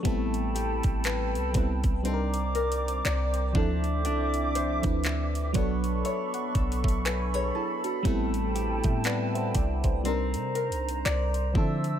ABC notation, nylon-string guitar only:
X:1
M:4/4
L:1/16
Q:"Swing 16ths" 1/4=60
K:Ador
V:1 name="Nylon-string guitar"
A,2 G2 B2 C2 C2 _B2 d2 D2 | D2 c2 e2 B,2 ^c2 A2 B c A2 | A,2 G2 B2 C2 C2 _B2 d2 D2 |]